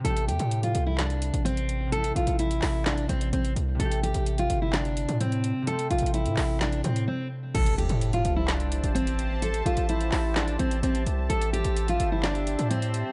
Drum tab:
CC |------------------------------------------------|------------------------------------------------|------------------------------------------------|------------------------------------------------|
HH |x--x--x--x--x--x--x-----x--x--x--x--x--x--x-----|x--x--x--x--x--x--o-----x--x--x--x--x--x--x-----|x--x--x--x--x--x--x-----x--x--x--x--x--x--x-----|x--x--x-x-x-x--x--o-----x--x--x--x--------------|
CP |------------------------x-----------------------|------------------x-----x-----------------------|------------------------x-----------------------|------------------x-----x-----------------------|
SD |------------------------o-----------------------|------------------o-----o-----------------------|------------------------o-----------------------|------------------o-----o-----------------------|

CC |x-----------------------------------------------|------------------------------------------------|------------------------------------------------|
HH |x--x--x--x--x--x--x-----x--x--x--x--x--x--x-----|x--x--x--x--x--x--o-----x--x--x--x--x--x--x-----|x--x--x--x--x--x--x-----x--x--x--x--x--x--x-----|
CP |------------------------x-----------------------|------------------x-----x-----------------------|------------------------x-----------------------|
SD |------------------------o-----------------------|------------------o-----o-----------------------|------------------------o-----------------------|